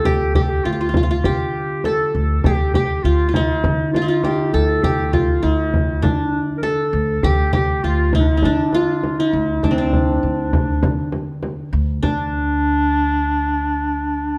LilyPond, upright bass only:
\new Staff \with { instrumentName = "Upright bass" } { \clef bass \time 4/4 \tempo 4 = 100 d,4 d,4 d4. d,8 | d,4 d,4 d4. d,8 | d,4 d,4 d4. d,8 | d,4 d,4 d4. d,8 |
d,4 d,4 d4. d,8 | d,1 | }